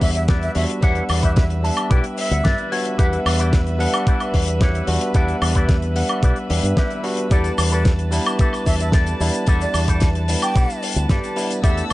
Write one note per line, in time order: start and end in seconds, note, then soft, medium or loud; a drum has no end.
0.00 0.48 E2 medium
0.00 0.52 G3 medium
0.00 0.52 B3 medium
0.00 0.52 D4 medium
0.00 11.60 B4 medium
0.00 7.28 E5 medium
0.00 0.10 E5 medium
0.00 0.53 F#5 loud
0.00 muted clean electric guitar stroke soft
0.00 kick medium
0.00 open hi-hat loud
0.15 0.24 E5 medium
0.15 closed hi-hat medium
0.28 0.56 E4 medium
0.28 0.56 G4 medium
0.28 0.56 B4 medium
0.28 0.56 D5 medium
0.28 kick loud
0.28 snare loud
0.28 closed hi-hat medium
0.43 0.51 E5 medium
0.43 closed hi-hat soft
0.55 0.64 E2 medium
0.55 0.79 G3 medium
0.55 0.79 B3 medium
0.55 0.79 D4 medium
0.55 0.79 F#4 loud
0.55 0.65 E5 medium
0.55 open hi-hat loud
0.70 closed hi-hat medium
0.81 1.00 E2 loud
0.81 1.60 G3 medium
0.81 1.60 B3 medium
0.81 1.60 D4 medium
0.81 1.03 E4 loud
0.81 1.03 G4 loud
0.81 1.03 B4 loud
0.81 1.03 C#5 loud
0.81 1.61 F#5 medium
0.81 kick loud
0.81 closed hi-hat medium
0.95 closed hi-hat soft
1.09 1.69 E2 medium
1.09 open hi-hat loud
1.09 high woodblock medium
1.23 1.43 E4 medium
1.23 1.43 G4 medium
1.23 1.43 B4 medium
1.23 1.43 E5 medium
1.23 1.32 E5 medium
1.23 kick medium
1.23 closed hi-hat medium
1.36 1.45 E5 medium
1.36 kick loud
1.36 snare loud
1.36 closed hi-hat medium
1.50 closed hi-hat soft
1.63 2.68 G3 medium
1.63 2.69 B3 medium
1.63 2.69 D4 medium
1.63 1.89 A5 medium
1.63 muted clean electric guitar stroke soft
1.63 open hi-hat medium
1.77 closed hi-hat medium
1.77 high woodblock medium
1.90 2.00 B1 medium
1.90 2.04 E4 medium
1.90 2.04 G4 medium
1.90 2.04 B4 medium
1.90 2.04 D5 medium
1.90 2.28 G5 medium
1.90 kick loud
1.90 closed hi-hat medium
2.04 closed hi-hat soft
2.18 2.58 E5 medium
2.18 muted clean electric guitar stroke soft
2.18 open hi-hat loud
2.31 2.40 D2 loud
2.31 2.44 F#5 medium
2.31 closed hi-hat medium
2.44 2.54 G2 medium
2.44 2.72 E4 medium
2.44 2.72 G4 medium
2.44 2.72 B4 medium
2.44 2.71 D5 medium
2.44 2.70 E5 medium
2.44 kick loud
2.44 snare loud
2.44 closed hi-hat medium
2.58 closed hi-hat soft
2.71 2.95 G3 medium
2.71 2.95 B3 medium
2.71 2.96 D4 medium
2.71 2.96 F#4 loud
2.71 2.97 C#5 medium
2.71 open hi-hat medium
2.85 closed hi-hat medium
2.98 3.16 E2 loud
2.98 3.76 G3 medium
2.98 3.77 B3 medium
2.98 3.77 D4 medium
2.98 3.19 E4 loud
2.98 3.19 G4 loud
2.98 3.19 B4 loud
2.98 3.19 E5 loud
2.98 3.77 F#5 medium
2.98 kick loud
2.98 closed hi-hat medium
3.13 closed hi-hat soft
3.26 3.86 E2 medium
3.26 open hi-hat loud
3.26 high woodblock medium
3.39 3.60 E4 medium
3.39 3.60 G4 medium
3.39 3.60 B4 medium
3.39 3.59 D5 medium
3.39 closed hi-hat medium
3.53 kick loud
3.53 snare loud
3.53 closed hi-hat medium
3.67 closed hi-hat soft
3.78 4.84 G3 loud
3.78 4.84 B3 medium
3.78 4.85 D4 medium
3.78 4.85 F#5 loud
3.78 muted clean electric guitar stroke soft
3.78 open hi-hat loud
3.94 closed hi-hat medium
3.94 high woodblock medium
4.06 4.21 E4 medium
4.06 4.21 G4 medium
4.06 4.21 B4 medium
4.06 4.21 D5 medium
4.06 kick loud
4.06 closed hi-hat medium
4.20 closed hi-hat soft
4.20 high woodblock medium
4.33 4.80 E2 medium
4.33 muted clean electric guitar stroke soft
4.33 kick medium
4.33 open hi-hat loud
4.48 closed hi-hat medium
4.61 4.88 E4 medium
4.61 4.88 G4 medium
4.61 4.88 B4 medium
4.61 4.88 C#5 medium
4.61 kick loud
4.61 snare loud
4.61 closed hi-hat medium
4.75 closed hi-hat soft
4.87 4.97 E2 medium
4.87 5.11 G3 medium
4.87 5.11 B3 medium
4.87 5.12 D4 medium
4.87 5.12 F#4 loud
4.87 open hi-hat loud
5.01 closed hi-hat medium
5.14 5.32 E2 loud
5.14 5.92 G3 medium
5.14 5.93 B3 medium
5.14 5.93 D4 medium
5.14 5.35 E4 loud
5.14 5.35 G4 loud
5.14 5.35 B4 loud
5.14 5.35 D5 loud
5.14 5.93 F#5 medium
5.14 kick loud
5.14 closed hi-hat medium
5.28 closed hi-hat soft
5.42 6.02 E2 medium
5.42 open hi-hat loud
5.42 high woodblock medium
5.55 5.76 E4 medium
5.55 5.76 G4 medium
5.55 5.76 B4 medium
5.55 5.76 D5 medium
5.55 kick medium
5.55 closed hi-hat medium
5.69 kick loud
5.69 snare loud
5.69 closed hi-hat medium
5.82 closed hi-hat soft
5.95 6.47 G3 medium
5.95 6.47 B3 medium
5.95 6.47 D4 medium
5.95 6.47 F#5 medium
5.95 muted clean electric guitar stroke soft
5.95 open hi-hat loud
6.09 closed hi-hat medium
6.09 high woodblock medium
6.23 6.32 B1 medium
6.23 6.37 E4 medium
6.23 6.37 G4 medium
6.23 6.37 B4 medium
6.23 6.37 D5 medium
6.23 kick loud
6.23 closed hi-hat medium
6.36 closed hi-hat soft
6.49 6.59 E2 medium
6.49 7.01 G3 medium
6.49 7.01 B3 medium
6.49 7.01 D4 medium
6.49 7.01 G4 medium
6.49 muted clean electric guitar stroke soft
6.49 open hi-hat loud
6.63 6.72 G2 loud
6.63 closed hi-hat medium
6.77 7.04 E4 medium
6.77 7.04 G4 medium
6.77 7.04 B4 medium
6.77 7.04 E5 medium
6.77 kick loud
6.77 snare loud
6.77 closed hi-hat medium
6.90 closed hi-hat soft
7.03 7.27 G3 medium
7.03 7.28 B3 medium
7.03 7.28 D4 medium
7.03 7.28 F#4 loud
7.03 open hi-hat loud
7.17 closed hi-hat medium
7.30 7.49 E2 loud
7.30 8.08 G3 medium
7.30 8.09 B3 medium
7.30 8.09 D4 medium
7.30 8.09 E4 medium
7.30 7.52 G4 loud
7.30 7.52 A4 loud
7.30 7.52 B4 medium
7.30 7.52 D5 loud
7.30 11.59 A5 medium
7.30 kick loud
7.30 closed hi-hat medium
7.30 shaker medium
7.44 closed hi-hat soft
7.44 shaker medium
7.58 8.18 E2 medium
7.58 open hi-hat loud
7.58 high woodblock medium
7.58 shaker medium
7.72 7.92 G4 medium
7.72 7.92 A4 medium
7.72 7.90 B4 medium
7.72 7.92 B4 medium
7.72 7.92 D5 medium
7.72 closed hi-hat medium
7.72 shaker medium
7.85 kick loud
7.85 snare loud
7.85 closed hi-hat medium
7.85 shaker medium
7.99 closed hi-hat soft
8.11 9.16 G3 loud
8.11 9.17 B3 medium
8.11 9.17 D4 medium
8.11 9.17 E4 loud
8.11 muted clean electric guitar stroke soft
8.11 open hi-hat medium
8.11 shaker medium
8.26 closed hi-hat medium
8.26 high woodblock medium
8.26 shaker medium
8.39 8.53 G4 medium
8.39 8.53 A4 medium
8.39 8.53 B4 medium
8.39 8.53 E5 medium
8.39 kick loud
8.39 closed hi-hat medium
8.39 shaker medium
8.53 closed hi-hat soft
8.53 high woodblock medium
8.53 shaker soft
8.66 9.13 E2 medium
8.66 8.75 E5 medium
8.66 muted clean electric guitar stroke soft
8.66 kick medium
8.66 open hi-hat loud
8.66 shaker medium
8.80 8.89 E5 medium
8.80 closed hi-hat medium
8.80 shaker soft
8.92 9.20 G4 medium
8.92 9.20 A4 medium
8.92 9.20 B4 medium
8.92 9.20 D5 medium
8.92 kick loud
8.92 snare loud
8.92 closed hi-hat medium
8.92 shaker medium
9.07 closed hi-hat soft
9.07 shaker soft
9.20 9.29 E2 medium
9.20 9.44 G3 medium
9.20 9.44 B3 medium
9.20 9.44 D4 medium
9.20 9.44 E4 loud
9.20 open hi-hat loud
9.20 shaker medium
9.34 closed hi-hat medium
9.34 shaker medium
9.47 9.65 E2 loud
9.47 10.25 G3 medium
9.47 10.25 B3 medium
9.47 10.25 D4 medium
9.47 10.26 E4 medium
9.47 9.68 G4 loud
9.47 9.68 A4 medium
9.47 9.68 B4 medium
9.47 9.68 E5 loud
9.47 kick loud
9.47 closed hi-hat medium
9.47 shaker medium
9.61 9.80 D5 medium
9.61 closed hi-hat soft
9.61 shaker medium
9.74 10.34 E2 medium
9.74 open hi-hat medium
9.74 high woodblock medium
9.74 shaker medium
9.88 10.08 G4 medium
9.88 10.09 A4 medium
9.88 10.08 B4 medium
9.88 10.09 D5 medium
9.88 kick medium
9.88 closed hi-hat medium
9.88 shaker medium
10.00 kick loud
10.00 snare loud
10.00 closed hi-hat medium
10.00 shaker medium
10.15 closed hi-hat soft
10.28 11.33 G3 medium
10.28 11.33 B3 medium
10.28 11.34 D4 medium
10.28 11.34 E4 medium
10.28 muted clean electric guitar stroke soft
10.28 open hi-hat loud
10.28 shaker medium
10.42 10.83 G5 loud
10.42 closed hi-hat medium
10.42 high woodblock medium
10.42 shaker medium
10.55 10.64 B1 medium
10.55 10.69 G4 medium
10.55 10.69 A4 medium
10.55 10.69 B4 medium
10.55 10.69 D5 medium
10.55 kick loud
10.55 closed hi-hat medium
10.55 shaker medium
10.70 closed hi-hat soft
10.70 shaker medium
10.83 muted clean electric guitar stroke soft
10.83 open hi-hat loud
10.83 shaker medium
10.96 11.05 D2 loud
10.96 closed hi-hat medium
10.96 shaker medium
11.09 11.18 G2 medium
11.09 11.37 G4 medium
11.09 11.37 A4 medium
11.09 11.37 B4 medium
11.09 11.37 D5 medium
11.09 kick loud
11.09 snare loud
11.09 closed hi-hat medium
11.09 shaker medium
11.24 closed hi-hat soft
11.24 shaker soft
11.36 11.60 G3 medium
11.36 11.60 B3 medium
11.36 11.60 D4 medium
11.36 11.60 E4 loud
11.36 open hi-hat loud
11.36 shaker medium
11.51 closed hi-hat medium
11.51 shaker soft
11.62 11.81 E2 loud
11.62 11.93 A3 medium
11.62 11.93 B3 medium
11.62 11.93 D4 medium
11.62 11.93 E4 medium
11.62 11.84 G4 loud
11.62 11.84 A4 loud
11.62 11.93 B4 medium
11.62 11.84 B4 loud
11.62 11.84 E5 loud
11.62 11.93 A5 medium
11.62 11.93 E6 medium
11.62 kick loud
11.62 closed hi-hat medium
11.62 shaker medium
11.77 closed hi-hat soft
11.77 shaker soft